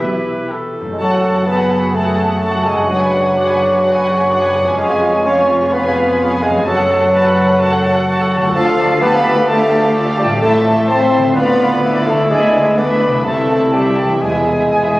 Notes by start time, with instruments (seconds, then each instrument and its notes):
Already playing: bassoon E3, harp E3 E4 G4, viola section E4, clarinet G4, flute section E5, violin section E5
0.01 double bass section B1, cello section B2, harp B3, cor anglais B4
0.17 harp E4
0.34 harp G4
0.50 harp F#4, violin section G4, cor anglais A4
0.66 harp G4
0.81 harp F#2 E4
0.85 harp A3
0.90 bassoon G#3, harp C#4
0.94 harp F#4
0.99 double bass section F#1, cello section F#2, french horn section F#3, bassoon F#3, clarinet F#4, viola section A4, cor anglais A4, flute section F#5, violin section F#5 A5
1.12 viola section F#4, violin section F#5 A5
1.23 viola section A4, violin section F#5 A5
1.35 viola section F#4, violin section F#5 A5
1.46 bassoon B3, french horn section B3, cor anglais G#4, viola section A4, clarinet B4, violin section F#5 A5, flute section B5
1.58 viola section F#4, violin section F#5 A5
1.70 viola section A4, violin section F#5 A5
1.82 viola section F#4, violin section F#5 A5
1.94 french horn section A3, bassoon A3, viola section A4, clarinet A4, violin section F#5 A5, flute section A5
2.06 viola section F#4, violin section F#5 A5
2.18 viola section A4, violin section F#5 A5
2.29 viola section F#4, violin section F#5
2.33 violin section A5
2.41 cor anglais F#4, viola section A4, violin section F#5 A5
2.52 viola section F#4, violin section F#5
2.57 violin section A5
2.63 french horn section G#3, bassoon G#3, clarinet G#4, viola section A4, flute section G#5, violin section A5
2.69 harp F#2, violin section F#5
2.76 harp G#3, viola section F#4, violin section F#5 A5
2.80 harp D4
2.85 harp B4, violin section F#5
2.89 bassoon F#3, french horn section F#3, clarinet F#4, viola section G#4, violin section D5, flute section F#5
3.00 viola section B4, violin section F#5 G#5
3.12 viola section G#4, violin section D5 F#5
3.24 viola section B4, violin section F#5 G#5
3.36 cor anglais D4, viola section G#4, violin section D5 F#5
3.47 viola section B4, violin section F#5 G#5
3.59 viola section G#4, violin section D5 F#5
3.71 viola section B4, violin section F#5 G#5
3.82 cor anglais F#4, viola section G#4, violin section D5 F#5
3.95 viola section B4, violin section F#5 G#5
4.07 viola section G#4, violin section D5 F#5
4.18 viola section B4, violin section F#5 G#5
4.31 cor anglais D4, viola section G#4, violin section D5 F#5
4.41 viola section B4, violin section F#5 G#5
4.54 viola section G#4, violin section D5 F#5
4.61 harp F2
4.66 harp G#3, viola section B4, violin section F#5 G#5
4.70 harp C#4
4.75 bassoon G#3, cor anglais C#4, harp C#5, violin section C#5
4.79 double bass section F1, cello section F2, french horn section G#3, viola section F4, clarinet G#4, violin section F5, flute section G#5
4.88 viola section G#4, violin section B4 G#5
5.02 viola section F4, violin section C#5 F5
5.13 viola section G#4, violin section B4 G#5
5.25 french horn section C#4, bassoon C#4, cor anglais F4, viola section F4, violin section C#5 F5, clarinet C#5, flute section C#6
5.37 viola section G#4, violin section B4 G#5
5.49 viola section F4, violin section C#5 F5
5.62 viola section G#4, violin section B4 G#5
5.72 bassoon B3, french horn section B3, viola section F4, clarinet B4, violin section C#5 F5, flute section B5
5.80 bassoon C#4
5.85 bassoon B3, viola section G#4, violin section B4 G#5
5.96 viola section F4, violin section C#5 F5
6.08 viola section G#4, violin section B4 G#5
6.20 viola section F4, cor anglais G#4, violin section C#5 F5
6.31 viola section G#4, violin section B4 G#5
6.43 bassoon G#3, french horn section G#3, viola section F4, clarinet G#4, violin section C#5 F5, flute section G#5
6.49 harp F#2
6.53 harp A3, viola section G#4, violin section G#5
6.58 harp C#4, violin section B4
6.63 harp C#5
6.67 double bass section F#1, cello section F#2, french horn section F#3, bassoon F#3, viola section F#4, clarinet F#4, cor anglais A4, violin section C#5 A5, flute section F#5
6.78 viola section A4, violin section A4 F#5
6.89 viola section F#4, violin section C#5 A5
7.02 viola section A4, violin section A4 F#5
7.13 viola section F#4, cor anglais B4, violin section C#5 A5
7.24 viola section A4, violin section F#5
7.30 violin section A4
7.37 viola section F#4, violin section C#5 A5
7.48 viola section A4, violin section A4 F#5
7.60 viola section F#4, cor anglais A4, violin section C#5 A5
7.72 viola section A4, violin section A4 F#5
7.84 viola section F#4, violin section C#5 A5
7.96 viola section A4, violin section A4 F#5
8.08 cor anglais F#4, viola section F#4, violin section C#5 A5
8.20 viola section A4, violin section A4 F#5
8.32 viola section F#4, violin section C#5 A5
8.36 harp D3
8.41 harp A3, violin section A4 F#5, viola section A4
8.46 harp F4
8.50 harp D5
8.54 cello section D2, double bass section D2, french horn section F3, bassoon F3, viola section F4, clarinet F4, cor anglais A4, violin section D5 A5, flute section F5
8.67 viola section A4, violin section F5
8.79 viola section F4, violin section D5 A5
8.90 viola section A4, violin section F5
9.01 bassoon B3, french horn section B3, viola section F4, cor anglais G4, clarinet B4, violin section D5 A5, flute section B5
9.13 viola section A4, violin section F5
9.25 viola section F4, violin section D5 A5
9.36 viola section A4, violin section F5
9.47 french horn section A3, bassoon A3, viola section F4, clarinet A4, violin section D5 A5, flute section A5
9.60 viola section A4, violin section F5
9.71 viola section F4, violin section D5 A5
9.82 viola section A4, violin section F5
9.94 viola section F4, violin section D5 A5
10.07 viola section A4, violin section F5
10.18 bassoon G3, french horn section G3, viola section F4, clarinet G4, violin section D5 A5, flute section G5
10.24 harp A2
10.29 harp C4, viola section A4, violin section F5
10.33 harp E4
10.37 harp E5
10.42 double bass section A1, cello section A2, french horn section A3, bassoon A3, viola section E4, clarinet A4, violin section C5 A5, flute section A5
10.54 viola section A4, violin section A4 E5
10.65 viola section E4, violin section C5 A5
10.76 violin section A4 E5, viola section A4
10.88 bassoon C4, french horn section C4, viola section E4, clarinet C5, violin section C5 A5, flute section C6
11.01 viola section A4, violin section A4 E5
11.13 viola section E4, violin section C5 A5
11.18 harp D3
11.22 harp B3, violin section A4 E5, viola section A4
11.27 harp F4
11.31 harp D5
11.35 double bass section D2, cello section D2, bassoon B3, french horn section B3, viola section D4, cor anglais F4, clarinet B4, violin section B4 F5, flute section B5
11.47 viola section F4, violin section D5
11.59 viola section D4, violin section B4 F5
11.71 viola section F4, violin section D5
11.83 viola section D4, cor anglais E4, violin section B4 F5
11.94 viola section F4, violin section D5
12.06 bassoon A3, french horn section A3, viola section D4, clarinet A4, violin section B4 F5, flute section A5
12.12 harp D3
12.17 harp B3, viola section F4, violin section D5
12.21 harp E4
12.26 violin section B4, harp E5
12.30 bassoon G#3, french horn section G#3, viola section D4, clarinet G#4, violin section D5, flute section G#5
12.40 viola section E4, violin section G#4 E5
12.52 viola section D4, violin section B4 D5
12.64 viola section E4, violin section G#4 E5
12.76 bassoon B3, french horn section B3, viola section D4, cor anglais D4, violin section B4 D5, clarinet B4, flute section B5
12.88 viola section E4, violin section G#4 E5
13.00 viola section D4, violin section B4 D5
13.07 harp C3
13.12 harp C4, viola section E4, violin section G#4 E5
13.16 harp E4
13.21 french horn section A3, viola section C4, harp E5, violin section A5
13.25 cello section C2, double bass section C2, bassoon A3, cor anglais E4, clarinet A4, violin section C5, flute section A5
13.36 viola section E4, violin section A4 E5
13.48 viola section C4, violin section C5 A5
13.60 viola section E4, violin section A4 E5
13.72 bassoon G3, french horn section G3, viola section C4, clarinet G4, violin section C5 A5, flute section G5
13.84 viola section E4, violin section A4 E5
13.97 viola section C4, violin section C5 A5
14.04 harp E3
14.08 harp B3, viola section E4, violin section A4 E5
14.13 harp E4
14.17 cor anglais G#4, harp E5, flute section G#5
14.22 double bass section E1, cello section E2, bassoon G#3, french horn section G#3, viola section G#4, clarinet G#4, violin section B4 G#5
14.34 viola section E4, violin section G#4 E5
14.46 viola section G#4, violin section B4 G#5
14.58 viola section E4, violin section G#4 E5
14.71 cello section G#2, viola section G#4, violin section B4 G#5
14.82 viola section E4, violin section G#4 E5
14.94 viola section G#4, violin section B4 G#5